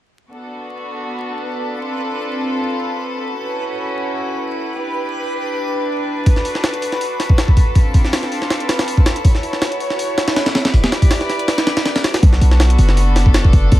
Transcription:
0.30 B3 D4 F#4 A4 B4 B5
1.79 C4 F4
3.28 C#4 E4 F#4
4.77 D4 G4 B4
6.26 F#4 A4, kick, open hi-hat
6.36 snare
6.45 open hi-hat
6.55 snare
6.64 snare, open hi-hat
6.74 closed hi-hat
6.82 open hi-hat
6.92 snare
7.01 open hi-hat
7.20 snare, open hi-hat
7.30 kick
7.38 snare, open hi-hat
7.48 kick
7.57 kick, open hi-hat
7.75 C4 D4 F4, kick, open hi-hat
7.94 kick, open hi-hat
8.05 snare
8.13 snare, open hi-hat
8.23 snare
8.32 open hi-hat
8.42 snare
8.50 snare, open hi-hat
8.60 closed hi-hat
8.69 snare, open hi-hat
8.79 snare, open hi-hat
8.88 open hi-hat
8.97 kick
9.06 snare, open hi-hat
9.16 closed hi-hat
9.25 E4 F#4 C#5, kick, open hi-hat
9.35 snare
9.43 open hi-hat
9.53 snare
9.62 snare, open hi-hat
9.72 closed hi-hat
9.80 open hi-hat
9.90 snare
9.99 open hi-hat
10.18 snare, open hi-hat
10.28 snare, open hi-hat
10.36 snare, open hi-hat
10.46 snare, open hi-hat
10.55 snare, open hi-hat
10.65 snare, open hi-hat
10.74 G4 B4 D5, kick, open hi-hat
10.84 snare, open hi-hat
10.92 snare, open hi-hat
11.02 kick, open hi-hat
11.11 snare, open hi-hat
11.21 snare
11.30 snare, open hi-hat
11.39 closed hi-hat
11.48 snare, open hi-hat
11.58 snare, open hi-hat
11.67 snare, open hi-hat
11.77 snare, open hi-hat
11.85 snare, open hi-hat
11.96 snare, open hi-hat
12.04 snare, open hi-hat
12.14 snare, open hi-hat
12.23 B1 B3 D4 F#4 A4, kick, open hi-hat
12.33 snare
12.41 B1, open hi-hat
12.51 snare
12.60 snare, open hi-hat
12.70 closed hi-hat
12.79 F#1, open hi-hat
12.89 snare
12.97 open hi-hat
13.16 snare, open hi-hat
13.26 kick
13.34 snare, open hi-hat
13.45 kick
13.53 F#1, kick, open hi-hat
13.72 D2 C4 F4, kick, open hi-hat

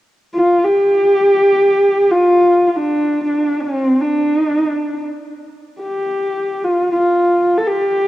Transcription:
0.34 F4
0.64 G4
2.11 F4
2.67 F4
2.76 D4
3.24 D4
3.61 C4
4.01 D4
5.81 G4
6.64 F4
6.91 F4
7.57 A4
7.67 G4

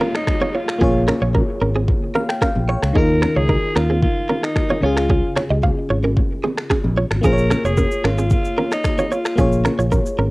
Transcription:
Already playing: A#3 F4 G#4 C#5, downlifter
0.01 C#4 A#4, low bongo
0.15 D#4, finger snap, cross-stick
0.27 finger snap, kick, cross-stick, high bongo
0.41 F4 C#5, low bongo
0.55 F4 C#5
0.68 finger snap, cross-stick
0.79 A#1 A#3 C#4 F4 G#4, kick, low conga
0.84 C#5
1.08 C#4 A#4, finger snap, cross-stick, low bongo, low conga
1.22 A#1 F4 C#5
1.35 C#4 A#4, kick, high bongo
1.61 G#1 C#4 A#4
1.76 C4 G#4
1.88 kick, low conga
2.15 C#4 A#4 F5, low bongo
2.29 G5, finger snap, cross-stick
2.41 C#4 A#4 F5, finger snap, kick, cross-stick, high bongo
2.55 A#1, low bongo
2.69 F4 C#5
2.83 C#2, finger snap, cross-stick
2.93 D#2 D#3 D#4 F4 G#4 A#4, kick, low conga
2.98 A#4
3.22 C#4 A#4, finger snap, cross-stick, low bongo, low conga
3.36 C#2 F4 G#4 C#5
3.49 D#4 A#4, kick, high bongo
3.76 D#2 C#4 F4 A#4, finger snap, cross-stick
3.90 C4 G#4
4.02 F4, kick, low conga
4.29 C#4 A#4, low bongo
4.43 D#4, finger snap, cross-stick
4.56 finger snap, kick, cross-stick, high bongo
4.70 F4 C#5, low bongo
4.81 C#2 C#3 C#4 F4 C#5
4.86 G#4
4.97 finger snap, cross-stick
5.10 C#4 G#4, kick, low conga
5.36 F4 C#5, finger snap, cross-stick, low bongo, low conga
5.50 C#2 G4 D#5
5.63 G#4 F5, kick, high bongo
5.90 G#1 F4 C#5
6.03 C#4 A#4, high bongo
6.17 kick, low conga
6.44 C4 G#4, low bongo
6.58 finger snap, cross-stick
6.70 C#4 G#4, finger snap, kick, cross-stick, high bongo
6.84 A#1, low bongo
6.97 F4 C#5
7.11 G#1, finger snap, cross-stick, high bongo
7.21 A#1 A#3 C#4 F4 G#4 A#4, kick, low conga, shaker
7.26 C5
7.33 C#5
7.38 shaker
7.50 C#4 A#4, finger snap, cross-stick, low bongo, low conga, shaker
7.64 F1 F4 G#4 C#5, shaker
7.77 C#4 A#4, kick, high bongo, shaker
7.91 shaker
8.04 G#1 C#4 F4 A#4, finger snap, cross-stick
8.18 C4 G#4, shaker
8.30 F4, kick, low conga, shaker
8.45 shaker
8.58 C#4 A#4, low bongo
8.72 D#4, finger snap, cross-stick, shaker
8.84 finger snap, kick, cross-stick, high bongo, shaker
8.98 F4 C#5, low bongo, shaker
9.12 F4 C#5, shaker
9.25 finger snap, cross-stick, shaker
9.36 A#1 A#3 C#4 F4 G#4, kick, low conga, shaker
9.41 C#5
9.52 shaker
9.65 C#4 A#4, finger snap, cross-stick, low bongo, low conga, shaker
9.79 A#1 F4 C#5, shaker
9.92 C#4 A#4, kick, high bongo, shaker
10.06 shaker
10.18 G#1 C#4 A#4

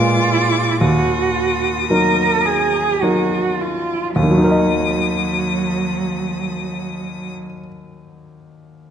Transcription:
Already playing: A#2 G#3 F4 B4 D6
0.79 D#2 F#4 D#6
1.88 F#3 D#4 A#4
2.46 G#4
3.02 F#3 D#4 F#4 A#4
3.61 F4
4.16 D#2 F#3 D#6
4.23 D#3
4.31 F#3
4.38 D#4
4.44 A#4
4.51 D#5

